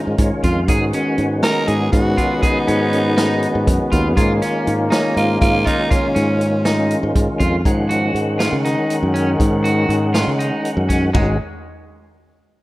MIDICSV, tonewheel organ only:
0, 0, Header, 1, 2, 480
1, 0, Start_track
1, 0, Tempo, 497925
1, 658, Time_signature, 7, 3, 24, 8
1, 12173, End_track
2, 0, Start_track
2, 0, Title_t, "Tonewheel organ"
2, 0, Program_c, 0, 16
2, 0, Note_on_c, 0, 51, 65
2, 0, Note_on_c, 0, 56, 57
2, 0, Note_on_c, 0, 61, 57
2, 0, Note_on_c, 0, 65, 69
2, 180, Note_on_c, 0, 73, 73
2, 402, Note_off_c, 0, 73, 0
2, 428, Note_on_c, 0, 77, 57
2, 619, Note_off_c, 0, 51, 0
2, 621, Note_off_c, 0, 56, 0
2, 621, Note_off_c, 0, 61, 0
2, 622, Note_off_c, 0, 65, 0
2, 647, Note_off_c, 0, 77, 0
2, 662, Note_on_c, 0, 51, 69
2, 662, Note_on_c, 0, 61, 65
2, 664, Note_on_c, 0, 56, 61
2, 667, Note_on_c, 0, 66, 80
2, 3980, Note_off_c, 0, 51, 0
2, 3981, Note_off_c, 0, 56, 0
2, 3981, Note_off_c, 0, 61, 0
2, 3983, Note_off_c, 0, 66, 0
2, 4019, Note_on_c, 0, 51, 75
2, 4022, Note_on_c, 0, 56, 66
2, 4022, Note_on_c, 0, 61, 62
2, 4026, Note_on_c, 0, 65, 80
2, 7341, Note_off_c, 0, 51, 0
2, 7343, Note_off_c, 0, 56, 0
2, 7343, Note_off_c, 0, 61, 0
2, 7344, Note_off_c, 0, 65, 0
2, 7378, Note_on_c, 0, 51, 66
2, 7380, Note_on_c, 0, 56, 60
2, 7383, Note_on_c, 0, 61, 64
2, 7387, Note_on_c, 0, 78, 75
2, 10702, Note_off_c, 0, 51, 0
2, 10703, Note_off_c, 0, 56, 0
2, 10705, Note_off_c, 0, 61, 0
2, 10707, Note_off_c, 0, 78, 0
2, 10738, Note_on_c, 0, 51, 73
2, 10738, Note_on_c, 0, 61, 67
2, 10738, Note_on_c, 0, 66, 79
2, 10739, Note_on_c, 0, 56, 67
2, 10963, Note_off_c, 0, 51, 0
2, 10963, Note_off_c, 0, 61, 0
2, 10963, Note_off_c, 0, 66, 0
2, 10964, Note_off_c, 0, 56, 0
2, 12173, End_track
0, 0, End_of_file